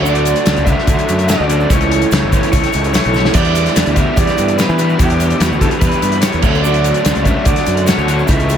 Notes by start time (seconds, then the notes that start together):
Already playing: D2 D5 F#5
0.03 D3 F#3 A3 D4 F#4 D5, shaker
0.15 closed hi-hat
0.25 closed hi-hat, shaker
0.36 closed hi-hat, shaker
0.46 D2 D3 F#3 A3 C#4 D4 F#4, snare, closed hi-hat, shaker
0.56 C#2, closed hi-hat, shaker
0.65 D3 F#3 A3 C#4 D4 F#4 E5, kick, closed hi-hat, shaker
0.79 snare
0.87 D2 D3 F#3 A3 D4 F#4, kick, closed hi-hat, shaker
0.99 closed hi-hat, shaker
1.09 F#2, closed hi-hat, shaker
1.19 closed hi-hat, shaker
1.29 D3 F#3 A3 C#4 D4 F#4 D5, snare, closed hi-hat, shaker
1.40 D2, shaker
1.49 D3 F#3 A3 C#4 D4 F#4, closed hi-hat, shaker
1.60 shaker
1.70 C#2 C#3 E3 A3 E4 G4 A4 C#5 G5 C#6, kick, closed hi-hat, shaker
1.81 closed hi-hat, shaker
1.91 closed hi-hat
2.02 closed hi-hat, shaker
2.11 C#2 C#3 E3 A3 E4 G4, snare, closed hi-hat, shaker
2.23 G1
2.32 C#3 E3 A3 E4 G4, kick, closed hi-hat, shaker
2.43 closed hi-hat, shaker
2.52 C#2 C#3 E3 A3 E4 G4 C#5, kick, closed hi-hat, shaker
2.63 snare, closed hi-hat, shaker
2.73 C#2, closed hi-hat, shaker
2.84 closed hi-hat, shaker
2.93 C#3 E3 A3 E4 G4 C#5, snare, closed hi-hat, shaker
3.04 B1, closed hi-hat
3.14 C#3 E3 A3 E4 G4, snare, shaker
3.25 snare
3.34 E2 E3 G3 B3 D4 E4 G4 D5 E5, kick, closed hi-hat, crash, shaker
3.45 closed hi-hat
3.55 closed hi-hat, shaker
3.66 snare, closed hi-hat, shaker
3.76 E2 E3 G3 B3 D4 E4 G4, snare, closed hi-hat, shaker
3.86 D2, closed hi-hat, shaker
3.95 E3 G3 B3 D4 E4 G4 E5, kick, closed hi-hat, shaker
4.17 E2 E3 G3 B3 D4 E4 G4 D5, kick, closed hi-hat, shaker
4.27 snare, closed hi-hat, shaker
4.38 G2, closed hi-hat, shaker
4.48 closed hi-hat, shaker
4.58 E3 G3 B3 D4 E4 G4 B4, snare, closed hi-hat, shaker
4.69 E3, shaker
4.79 E3 G3 B3 D4 E4 G4, closed hi-hat, shaker
4.89 shaker
4.99 E2 E3 G3 B3 D4 E4 G4, kick, closed hi-hat, shaker
5.10 closed hi-hat
5.20 closed hi-hat, shaker
5.30 closed hi-hat, shaker
5.40 E2 E3 G3 B3 D4 E4 G4, snare, closed hi-hat, shaker
5.45 F#4
5.51 D2, shaker
5.60 E3 G3 B3 D4 E4 G4 A4, kick, closed hi-hat, shaker
5.71 closed hi-hat
5.81 E2 E3 G3 B3 D4 E4 G4 B4, kick, closed hi-hat, shaker
5.92 closed hi-hat, shaker
6.02 G2, closed hi-hat, shaker
6.12 closed hi-hat, shaker
6.22 E3 G3 B3 D4 E4 G4 C#5, snare, closed hi-hat, shaker
6.32 E2, closed hi-hat, shaker
6.42 D2 D3 F#3 A3 C#4 D4 F#4 A4 F#5, kick, crash, shaker
6.55 shaker
6.63 D3 F#3 A3 D4 F#4 D5, shaker
6.74 closed hi-hat
6.84 closed hi-hat, shaker
6.94 closed hi-hat, shaker
7.05 D2 D3 F#3 A3 C#4 D4 F#4, snare, closed hi-hat, shaker
7.15 C#2, closed hi-hat, shaker
7.25 D3 F#3 A3 C#4 D4 F#4 E5, kick, closed hi-hat, shaker
7.45 D2 D3 F#3 A3 D4 F#4 D5, kick, closed hi-hat, shaker
7.56 snare, closed hi-hat, shaker
7.66 F#2, closed hi-hat, shaker
7.77 closed hi-hat, shaker
7.86 D3 F#3 A3 C#4 D4 F#4 C#5, snare, closed hi-hat, shaker
7.98 D2, shaker
8.07 D3 F#3 A3 C#4 D4 F#4, closed hi-hat, shaker
8.19 shaker
8.27 C#2 C#3 E3 A3 C#4 E4 G4 A4 E5 G5 C#6, kick, closed hi-hat, shaker
8.39 closed hi-hat, shaker
8.49 closed hi-hat, shaker